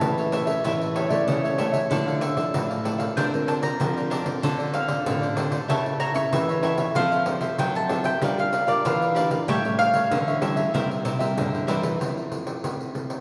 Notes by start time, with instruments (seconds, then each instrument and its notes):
Already playing: nylon-string guitar A3 C#4 E4, cavaquinho A4 C#5 E5, mandolin A5
0.01 nylon-string guitar E3, pandeiro
0.17 cavaquinho A4 C#5 E5, pandeiro
0.32 nylon-string guitar A3 C#4 E4, cavaquinho E4 A4 C#5 E5, mandolin E5, pandeiro
0.46 cavaquinho A4 C#5 E5, pandeiro
0.64 nylon-string guitar A2 E3 A3 C#4 E4, cavaquinho E4 A4 C#5 E5, pandeiro
0.81 muted cavaquinho stroke, pandeiro
0.95 cavaquinho E4 A4 C#5 E5, clarinet C#5, pandeiro
1.08 nylon-string guitar A3 C#4 E4, cavaquinho C#5 E5, clarinet D5 E5, pandeiro
1.12 cavaquinho A4
1.28 nylon-string guitar C#3 E3, clarinet C#5, pandeiro
1.44 cavaquinho A4 C#5 E5, pandeiro
1.58 nylon-string guitar A3 C#4 E4, cavaquinho E4 A4 C#5 E5, pandeiro
1.72 cavaquinho A4 C#5 E5, pandeiro
1.90 nylon-string guitar D3 F3 A3 E4, cavaquinho E4 A4 D5 F5, pandeiro
2.06 cavaquinho A4 D5 F5, pandeiro
2.21 mandolin E5, muted cavaquinho stroke, pandeiro
2.36 nylon-string guitar F3 A3 E4, cavaquinho A4 D5, pandeiro
2.54 nylon-string guitar A2, pandeiro
2.69 cavaquinho A4 D5 F5, pandeiro
2.83 nylon-string guitar F3 A3 E4, cavaquinho E4 A4 D5 F5, pandeiro
2.98 cavaquinho A4 D5 F5, pandeiro
3.17 nylon-string guitar D3 C4 F4 A#4, cavaquinho D4 A#4 C5 D5, mandolin G5, pandeiro
3.33 nylon-string guitar C4 F4 A#4, muted cavaquinho stroke, pandeiro
3.46 cavaquinho D4 A#4 C5 D5, mandolin A5, pandeiro
3.62 cavaquinho A#4 C5 D5, mandolin A#5, pandeiro
3.80 nylon-string guitar D3 F3 C4 F4 A#4, pandeiro
3.97 cavaquinho A#4 C5 D5, pandeiro
4.10 cavaquinho D4 A#4 C5 D5, pandeiro
4.25 nylon-string guitar C4 F4 A4, cavaquinho A#4 C5 D5, pandeiro
4.42 nylon-string guitar D3, cavaquinho F4 A4 C5 D5, pandeiro
4.58 cavaquinho A4 C5 D5, pandeiro
4.73 nylon-string guitar C4 F4 A4, mandolin F5, muted cavaquinho stroke, pandeiro
4.88 cavaquinho A4 C5 D5, pandeiro
5.06 nylon-string guitar A2 D3, pandeiro
5.22 cavaquinho A4 C5 D5, pandeiro
5.36 nylon-string guitar C4 F4 A4, cavaquinho F4 A4 C5 D5, pandeiro
5.51 cavaquinho A4 C5 D5, pandeiro
5.68 nylon-string guitar C#3 C#4 E4 A4, cavaquinho E4 A4 C#5 E5, mandolin A5, pandeiro
5.85 muted cavaquinho stroke, pandeiro
5.99 cavaquinho E4 A4 C#5 E5, mandolin A#5, pandeiro
6.14 nylon-string guitar C#4 E4 A4, cavaquinho A4 C#5 E5, mandolin C#6, pandeiro
6.33 nylon-string guitar C#3 E3, mandolin E5, pandeiro
6.49 cavaquinho A4 C#5 E5, pandeiro
6.63 nylon-string guitar C#4 E4 A4, cavaquinho E4 A4 C#5 E5, pandeiro
6.78 cavaquinho A4 C#5 E5, pandeiro
6.95 nylon-string guitar F3 C4 E4 A4, cavaquinho F4 A4 C5 E5, mandolin F5, pandeiro
7.12 cavaquinho A4 C5 E5, pandeiro
7.26 nylon-string guitar C4 A4, muted cavaquinho stroke, pandeiro
7.41 cavaquinho A4 C5 E5, pandeiro
7.58 nylon-string guitar C3 F#3, mandolin G5, pandeiro
7.75 cavaquinho A4 C5 E5, mandolin A5, pandeiro
7.89 nylon-string guitar C4 E4 A4, cavaquinho F4 A4 C5 E5, pandeiro
8.04 cavaquinho A4 C5 E5, mandolin G5, pandeiro
8.21 nylon-string guitar G3 D4 F4 A#4, cavaquinho G4 A#4 D5 F5, pandeiro
8.38 mandolin F5, muted cavaquinho stroke, pandeiro
8.52 cavaquinho G4 A#4 D5 F5, pandeiro
8.67 nylon-string guitar D4 F4 A#4, cavaquinho A#4 D5 F5, mandolin D5, pandeiro
8.85 nylon-string guitar D3 E3, mandolin F5, pandeiro
9.01 cavaquinho A#4 D5 F5, pandeiro
9.15 nylon-string guitar D4 F4 A#4, cavaquinho G4 A#4 D5 F5, pandeiro
9.31 cavaquinho A#4 D5 F5, pandeiro
9.48 nylon-string guitar A2 G3 A3 C#4 E4, cavaquinho G4 A4 C#5 E5, mandolin G5, pandeiro
9.64 nylon-string guitar G3 C#4 E4, cavaquinho A4 C#5 E5, pandeiro
9.79 mandolin F5, muted cavaquinho stroke, pandeiro
9.94 cavaquinho A4 C#5, pandeiro
10.11 nylon-string guitar D3 E3, pandeiro
10.27 cavaquinho A4 C#5 E5, pandeiro
10.41 nylon-string guitar G3 C#4 E4, cavaquinho G4 A4 C#5 E5, mandolin E5, pandeiro
10.56 cavaquinho A4 C#5 E5, pandeiro
10.74 nylon-string guitar C3 G3 A#3 E4, cavaquinho E4 A#4 C5 E5, pandeiro
10.90 muted cavaquinho stroke, pandeiro
11.05 nylon-string guitar C3, cavaquinho E4 A#4 C5 E5, pandeiro
11.19 nylon-string guitar G3 A#3 E4, cavaquinho A#4 C5 E5, pandeiro
11.37 nylon-string guitar G2 D3, pandeiro
11.53 cavaquinho A#4 C5 E5, pandeiro
11.67 nylon-string guitar E3 G3 A#3 E4, cavaquinho E4 A#4 C5 E5, pandeiro
11.83 cavaquinho A#4 C5 E5, pandeiro
12.00 nylon-string guitar F3 C4 E4 A4, pandeiro
12.18 pandeiro
12.31 nylon-string guitar C4 E4 A4, pandeiro
12.47 pandeiro
12.64 nylon-string guitar C3, pandeiro
12.81 pandeiro
12.94 nylon-string guitar C4 E4 A4, pandeiro
13.10 pandeiro